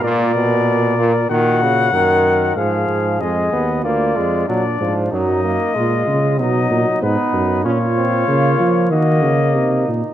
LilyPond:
<<
  \new Staff \with { instrumentName = "Trumpet" } { \time 4/4 \key ees \minor \tempo 4 = 95 d''2 ges''2 | f''4 ees''4 d''4 d''4 | ees''2 dis''4 b'4 | \key bes \minor des''2 ees''4. r8 | }
  \new Staff \with { instrumentName = "Flugelhorn" } { \time 4/4 \key ees \minor bes'2 ges'4 bes'4 | aes'4 aes'4 f'4 d'4 | ees'4 f'4 dis'4 dis'4 | \key bes \minor f'2 ges'8 r8 ees'4 | }
  \new Staff \with { instrumentName = "Trombone" } { \clef bass \time 4/4 \key ees \minor bes,8 ces4 bes,8 ees8 des8 ees4 | f4 aes8 ces'8 bes8 aes8 ges8 f8 | ges8 bes8 aes4 fis4 b4 | \key bes \minor des'8 c'8 bes4 bes4. r8 | }
  \new Staff \with { instrumentName = "Tuba" } { \clef bass \time 4/4 \key ees \minor bes,2 bes,4 ges,4 | aes,8 aes,8 f,8 ees,8 d,8 f,8 bes,8 aes,8 | ges,4 bes,8 des8 b,8 bes,8 aes,8 fis,8 | \key bes \minor bes,4 des8 f8 ees8 des8 c8 bes,8 | }
>>